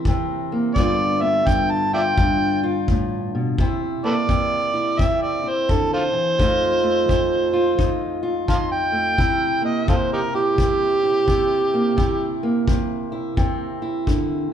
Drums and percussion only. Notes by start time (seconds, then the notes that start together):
0.05 kick
0.76 kick
1.47 kick
2.18 kick
2.88 kick
3.58 kick
4.29 kick
4.99 kick
5.69 kick
6.40 kick
7.09 kick
7.79 kick
8.48 kick
9.18 kick
9.88 kick
10.58 kick
11.28 kick
11.98 kick
12.68 kick
13.37 kick
14.07 kick